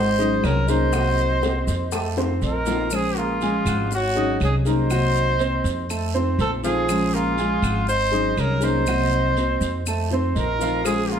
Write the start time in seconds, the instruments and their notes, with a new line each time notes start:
Already playing: upright bass G#1, trumpet C5, flute D#5, grand piano F#5 F#6
0.18 nylon-string guitar F#3 C#4 D#4 G#4, grand piano D#4 D#5 D#6, high bongo, maracas
0.43 upright bass C2, nylon-string guitar F#3 C#4 D#4 G#4, trumpet A#4, flute C#5, high bongo, low bongo, short guiro, claves, maracas
0.67 nylon-string guitar F#3 C#4 D#4 G#4, grand piano A#3 A#4 A#5, trumpet C5, flute D#5, short guiro, maracas
0.93 nylon-string guitar C3 D#3 A#3 C4 F#4, grand piano F#3 F#4 F#5, high bongo, long guiro, claves, maracas
1.17 high bongo, maracas
1.42 nylon-string guitar D#3 A#3 C4 F#4, grand piano C4 C5 C6, high bongo, short guiro, maracas
1.67 upright bass F2, high bongo, short guiro, maracas
1.92 grand piano A3 A4 A5, muted nylon-string guitar stroke, high bongo, long guiro, claves, maracas
2.17 nylon-string guitar D#3 A3 C4 F4, grand piano C4 C5 C6, high bongo, maracas
2.42 upright bass A#1, nylon-string guitar D#3 A3 C4 F4, trumpet A#4, flute D#5, short guiro, maracas
2.66 nylon-string guitar D#3 A3 C4 F4, grand piano F3 F4 F5, low bongo, short guiro, maracas
2.90 nylon-string guitar F3 G#3 C#4 F4, flute C5, long guiro, claves, maracas
2.95 trumpet G#4
3.16 grand piano A#3 A#4 A#5, trumpet F4, flute G#4, maracas
3.40 nylon-string guitar F3 G#3 C#4 F4, grand piano G#3 G#4 G#5, short guiro, maracas
3.65 upright bass G#1, grand piano F#5 F#6, short guiro, claves, maracas
3.91 flute C#5, muted nylon-string guitar stroke, long guiro, maracas
3.95 trumpet F#4
4.15 nylon-string guitar F#3 C#4 D#4 G#4, grand piano D#4 D#5 D#6, maracas
4.40 upright bass C2, nylon-string guitar F#3 C#4 D#4 G#4, flute C#5, short guiro, claves, maracas
4.45 trumpet G#4
4.65 nylon-string guitar F#3 C#4 D#4 G#4, grand piano A#3 A#4 A#5, trumpet C5, flute D#5, short guiro, maracas
4.90 nylon-string guitar C3 D#3 A#3 C4 F#4, grand piano F#3 F#4 F#5, long guiro, claves, maracas
5.16 maracas
5.39 nylon-string guitar D#3 A#3 C4 F#4, grand piano C4 C5 C6, short guiro, maracas
5.64 upright bass F2, short guiro, maracas
5.89 grand piano A3 A4 A5, muted nylon-string guitar stroke, long guiro, claves, maracas
6.14 nylon-string guitar D#3 A3 C4 F4, grand piano C4 C5 C6, maracas
6.39 upright bass A#1, nylon-string guitar D#3 A3 C4 F4, trumpet A4, flute C5, short guiro, maracas
6.64 nylon-string guitar D#3 A3 C4 F4, grand piano F3 F4 F5, trumpet G#4, flute C5, short guiro, maracas
6.89 nylon-string guitar F3 G#3 C#4 F4, long guiro, claves, maracas
7.13 grand piano A#3 A#4 A#5, trumpet F4, flute G#4, maracas
7.38 nylon-string guitar F3 G#3 C#4 F4, grand piano G#3 G#4 G#5, short guiro, maracas
7.62 upright bass G#1, grand piano F#5 F#6, short guiro, claves, maracas
7.87 trumpet C5, flute D#5, muted nylon-string guitar stroke, long guiro, maracas
8.12 nylon-string guitar F#3 C#4 D#4 G#4, grand piano D#4 D#5 D#6, maracas
8.36 upright bass C2, nylon-string guitar F#3, trumpet A#4, short guiro, claves, maracas
8.40 flute C#5
8.60 nylon-string guitar F#3 C#4 D#4 G#4, grand piano A#3 A#4 A#5, trumpet C5, flute D#5, short guiro, maracas
8.86 nylon-string guitar C3 D#3 A#3 C4 F#4, grand piano F#3 F#4 F#5, long guiro, claves, maracas
9.12 maracas
9.36 nylon-string guitar D#3 A#3 F#4, grand piano C4 C5 C6, short guiro, maracas
9.61 upright bass F2, short guiro, maracas
9.86 grand piano A3 A4 A5, muted nylon-string guitar stroke, long guiro, claves, maracas
10.11 nylon-string guitar D#3 A3 C4 F4, grand piano C4 C5 C6, maracas
10.35 upright bass A#1, nylon-string guitar D#3 A3 C4 F4, trumpet A#4, flute D#5, short guiro, maracas
10.59 nylon-string guitar D#3 A3 C4 F4, grand piano F3 F4 F5, short guiro, maracas
10.84 nylon-string guitar F3 G#3 C#4 F4, trumpet G#4, flute C5, cowbell, long guiro, claves, maracas
11.11 grand piano A#3 A#4 A#5, trumpet F4, flute G#4, maracas